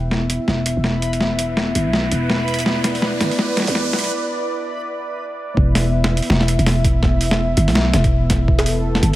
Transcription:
Already playing: E1 B3 E4 B4 E5, riser
0.11 snare
0.30 closed hi-hat
0.48 E1, snare
0.66 closed hi-hat
0.77 E1
0.84 snare
1.02 closed hi-hat
1.13 closed hi-hat
1.21 snare
1.39 closed hi-hat
1.57 snare
1.75 G1, closed hi-hat
1.86 B1
1.93 snare
2.12 E1, closed hi-hat
2.30 snare
2.48 closed hi-hat
2.54 closed hi-hat
2.59 closed hi-hat
2.66 D5, snare
2.84 snare, closed hi-hat
2.95 open hi-hat
3.02 snare
3.21 G1, snare, closed hi-hat
3.31 open hi-hat
3.39 snare
3.57 snare, closed hi-hat
3.60 snare
3.62 snare
3.65 E2, snare, open hi-hat
3.75 snare
3.93 B1, snare
3.99 closed hi-hat
4.04 closed hi-hat
5.57 E1 B3 E4 E5, kick
5.75 snare, open hi-hat
6.04 snare
6.17 closed hi-hat
6.22 open hi-hat
6.30 E1, snare
6.41 snare
6.48 closed hi-hat
6.59 E1, closed hi-hat
6.66 snare, open hi-hat
6.85 kick, closed hi-hat
7.03 kick, snare
7.21 open hi-hat
7.31 snare
7.57 G1, closed hi-hat
7.68 B1, snare, open hi-hat
7.75 snare
7.94 E1, snare, closed hi-hat
8.04 kick, closed hi-hat
8.30 kick, snare, closed hi-hat
8.48 A4, kick
8.59 snare
8.66 open hi-hat
8.95 snare
9.03 G1, closed hi-hat

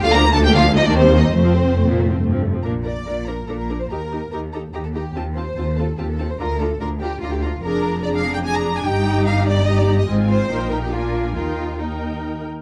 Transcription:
0.03 D2 D3 A#3 F4 F5
0.13 F3 D4 A#4 A#5
0.25 D3 A#3
0.34 F3 D4 A4 A5
0.45 D3 A#3 G4 G5
0.56 F3 D4 F4 F5
0.67 D3 A#3
0.77 F3 D4 D#4 D#5
0.87 D#2 D#3 A#3 D4 D5
0.98 G3 C4 C5
1.10 D#3 A#3
1.19 G3 C4 D#4 D#5
1.30 F1 F2 A3 C4 C5
1.44 F3 C4
1.54 A3
1.65 F3 C4
1.75 F2 A3
1.87 A#2 F3 C4
1.99 A3
2.09 A2 F3 C4
2.19 G2 A3
2.32 F3 C4
2.43 A3
2.53 F3 C4
2.63 A#1 A#2 D4 A#4 A#5
2.84 D4 A#4 D5 A#5
3.06 A#1 A#2 D4 A#4 A#5
3.26 D4 A#4 A#5
3.47 A#1 A#2 D4 A4 A#4 A#5
3.59 A#4
3.69 D4 A#4 A#5
3.80 C5
3.90 D#2 D#4 G4 A#4 A#5
4.11 D#4 G4 A#5
4.31 D#2 D#4 G4 A#4 A#5
4.53 D#4 G4 A4 A#5
4.73 D#2 D#4 G4 A#5
4.84 A4
4.94 D#4 G4 A#5
5.15 D#2 C4 F4 A5
5.36 C4 F4 C5 A5
5.57 D#2 C4 F4 A5
5.78 C4 F4 A4 A5
5.98 D#2 C4 F4 G4 A5
6.10 A4
6.19 C4 F4 A5
6.30 C5
6.40 D2 D4 F4 A#4 A#5
6.60 D4 F4 A4 A#5
6.81 D2 D4 F4 A#4 A#5
7.00 D4 F4 G4 A#5
7.21 D2 D4 F4 A#5
7.32 G4
7.42 D4 F4 A#5
7.63 F1 F2 D4 G#4 A#4 A#5
8.04 D4 G#4 D5 A#5
8.15 F5
8.34 G5
8.45 D4 G#4 G#5 A#5
8.55 A#5
8.76 G#5
8.85 G1 G2 D#4 G4 G5 A#5
9.27 F5
9.46 D5
9.68 D#4 G4 D#5 A#5
9.78 D5
9.99 D#5
10.09 G#1 G#2 C4 F4 G#5
10.30 C5
10.51 A#1 A#2 D#4 A#4 G5
10.71 A#4
10.82 G4
10.92 D4 F4 A#4 G#5
11.36 D#2 D#4 F4 A#4 G5
11.80 D#4 A#4 G5

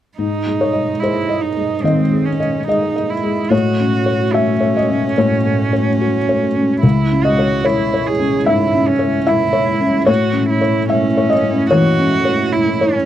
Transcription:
0.18 G#2 G#3 D#4 D#5
0.46 G#3
0.61 C#5
0.73 D#5
1.00 E4 G#4 C5
1.29 D#5
1.41 D#4
1.57 G#3
1.83 D#3 C4 D#5
2.11 G#3
2.25 C#4
2.40 D#5
2.68 D#4 G#4 D#5
2.96 D#5
3.10 E4
3.23 G#3
3.50 A2 A3 F#4 C#5
3.80 C#4
4.06 C#5
4.33 C#4 F#4 E5
4.61 C#5
4.77 D#5
4.90 C#4
5.18 A2 C#5
5.45 A3
5.73 C#5
6.01 F#4
6.29 C#5
6.56 C#4
6.81 C#2 G#3 E4 C#5
7.11 C#4
7.24 F#4 D#5
7.39 C#5
7.65 E4 C#5
7.94 C#5
8.07 G#4
8.20 C#4
8.46 G#2 E4 E5
8.74 C#4
8.88 C#4
8.99 C#5
9.27 E4 E5
9.53 C#5
9.81 C#4
10.06 A2 A3 E4 F#4 C#5
10.33 C#4
10.50 E4
10.61 C#5
10.89 C#4 E4 E5
11.17 C#5
11.30 D#5
11.44 C#4
11.71 E3 F#4 C#5
11.99 C#4
12.25 C#5
12.52 E4
12.81 C#5
12.94 C#4

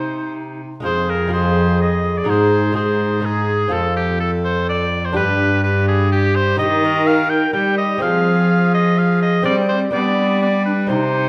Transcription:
Already playing: C3 D#4 C5
0.80 F2 G#3 F4 G#4
0.84 F2 G#4 C5
1.09 A#4
1.27 G#3 F4 G#4
1.33 G#4 C5
1.82 D#5
2.18 D5
2.24 G#2 G#3 D#4 G#4
2.28 G#2 G#4 C5
2.72 G#3 D#4 G#4
2.76 G#4 C5
3.20 G#3 D#4 G#4
3.24 G#4
3.68 F2 C4 F4 A4
3.73 A4
3.96 G4
4.20 A4
4.45 C5
4.69 D5
5.05 C5
5.13 G2 D4 G4 B4
5.64 G4 B4
5.88 G#4
6.12 G4
6.36 C5
6.57 D#3 D#4 G4 D#5
6.84 A#4
7.07 A#4 F5
7.30 G5
7.53 G3 G4 G5
7.78 D#5
7.98 F3 G#3 C4 C5
8.02 F3 G#4 F5
8.74 D#5
8.97 G#4 F5
9.22 D#5
9.42 G3 C4 C5 D5
9.69 C5
9.90 G3 B3 D4 B4 D5
10.42 B3 D5
10.65 D4 B4
10.87 C3 D#4 C5

